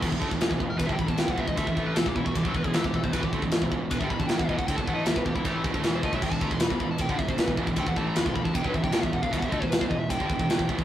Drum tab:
CC |x---------------|----------------|----------------|----------------|
RD |----b---b---b---|b---b---b---b---|b---b---b---b---|b---b---b---b---|
SD |----o-------o---|----o-------o---|----o-------o---|----o-------o---|
BD |oooo-oo-oooo-ooo|ooo--ooooooo-ooo|oooo-oo-oooo-ooo|ooo--oooo-oo--oo|

CC |x---------------|----------------|----------------|
RD |----b---b---b---|b---b---b---b---|b---b---b---b---|
SD |----o-------o---|----o-------o---|----o-------o---|
BD |oooo-oo-oooo-ooo|ooo--ooooooo-ooo|oooo-oo-oooo-ooo|